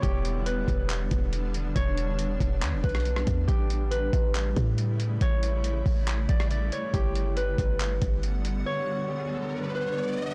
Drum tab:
HH |x---x---x---x---x---x---x---x---|x---x---x---x---x---xxxxx---x---|x---x---x---x---x---x---x---x---|x---x---x---o---x---x---x---x---|
CP |----------------x---------------|----------------x---------------|----------------x---------------|----------------x---------------|
SD |--------------------------------|----------------------r---r-----|--------------------------------|----------------------r---------|
BD |o-----------o-------o-----------|o-----------o-------o-------o---|o-----------o-------o-----------|o-----------o-------o-----------|

HH |x---x---x---x---x---x---x---x---|--------------------------------|
CP |----------------x---------------|--------------------------------|
SD |--------------------------------|--------------------------------|
BD |o-----------o-------o-----------|--------------------------------|